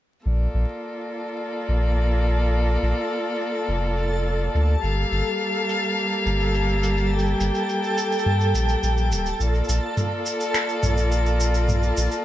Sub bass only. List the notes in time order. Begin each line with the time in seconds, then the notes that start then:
0.26 A#1
0.54 A#1
1.69 A#1
2.83 A#1
3.68 F1
4.55 D2
4.83 G1
5.12 G1
6.26 G1
7.40 G1
8.26 G2
8.55 A#1
8.83 A#1
9.11 D1
9.40 A#1
9.69 A#1
10.83 A#1
11.97 A#1